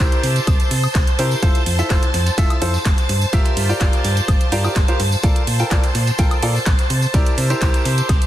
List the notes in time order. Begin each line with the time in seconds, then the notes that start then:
Already playing: C5 A5
0.00 E4 G4 A#4 C5, snare, ride, tambourine
0.12 closed hi-hat, tambourine
0.23 C3, open hi-hat, ride
0.36 closed hi-hat, tambourine
0.47 C2, kick, closed hi-hat, ride, tambourine, high woodblock
0.60 closed hi-hat, tambourine
0.71 C3, open hi-hat, ride
0.83 tambourine, high woodblock
0.95 C2, kick, snare, clap, closed hi-hat, ride, tambourine
1.07 closed hi-hat, tambourine
1.19 C3 E4 G4 A#4 C5, open hi-hat, ride
1.31 tambourine
1.43 F1 E4 F4 A4 C5, kick, closed hi-hat, ride, tambourine
1.55 closed hi-hat, tambourine
1.66 F2, open hi-hat, ride
1.79 E4 F4 A4 E5, tambourine
1.90 F1 E4 F4 A4 C5, kick, snare, clap, closed hi-hat, ride, tambourine
2.02 closed hi-hat, ride, tambourine
2.14 F2, snare, open hi-hat, ride
2.27 snare, closed hi-hat, tambourine
2.38 F1 E4 F4 A4 E5, kick, closed hi-hat, ride, tambourine
2.50 closed hi-hat, tambourine, high woodblock
2.62 F2 E4 F4 A4 C5, open hi-hat, ride
2.74 snare, tambourine
2.85 F1, kick, snare, clap, closed hi-hat, ride, tambourine
2.98 snare, closed hi-hat, tambourine
3.09 G2, open hi-hat, ride
3.21 tambourine
3.33 G1 F4 G4 A#4 E5, kick, closed hi-hat, ride, tambourine
3.45 closed hi-hat, ride, tambourine
3.57 G2, open hi-hat, ride
3.69 F4 G4 A#4 D5, tambourine
3.80 G1 F4 G4 A#4 D5, kick, snare, clap, closed hi-hat, ride, tambourine
3.93 closed hi-hat, tambourine
4.04 G2, open hi-hat, ride
4.17 closed hi-hat, tambourine
4.28 G1, kick, closed hi-hat, ride, tambourine, high woodblock
4.40 closed hi-hat, tambourine
4.52 G2 F4 G4 A#4 D5, open hi-hat, ride
4.64 F4 G4 A#4 D5, tambourine, high woodblock
4.76 G1, kick, snare, clap, closed hi-hat, ride, tambourine
4.88 F4 G4 A#4 C5, closed hi-hat, tambourine
5.00 G2, open hi-hat, ride
5.12 tambourine
5.23 A#1 F4 A4 A#4 D5, kick, closed hi-hat, ride
5.36 closed hi-hat, tambourine
5.47 A#2, open hi-hat, ride
5.59 F4 A4 A#4 G5, tambourine
5.71 A#1 F4 A4 A#4 D5, kick, snare, clap, closed hi-hat, ride, tambourine
5.84 closed hi-hat, ride, tambourine
5.95 A#2, snare, open hi-hat, ride
6.07 snare, closed hi-hat, tambourine
6.18 A#1 F4 A4 A#4 G5, kick, closed hi-hat, ride, tambourine
6.31 closed hi-hat, tambourine, high woodblock
6.43 A#2 F4 A4 A#4 D5, open hi-hat, ride
6.55 snare, tambourine
6.66 A#1, kick, snare, clap, closed hi-hat, ride, tambourine
6.78 snare, closed hi-hat, tambourine
6.90 C3, open hi-hat, ride
7.02 tambourine
7.14 C2 E4 G4 A#4 D5, kick, closed hi-hat, ride, tambourine
7.26 closed hi-hat, ride, tambourine
7.38 C3, open hi-hat, ride
7.50 E4 G4 A#4 C5, closed hi-hat, tambourine
7.61 C2 E4 G4 A#4 C5, kick, snare, clap, closed hi-hat, ride, tambourine
7.74 closed hi-hat, tambourine
7.85 C3, open hi-hat, ride
7.98 closed hi-hat, tambourine
8.09 C2, kick, snare, closed hi-hat, ride, tambourine, high woodblock
8.22 closed hi-hat, tambourine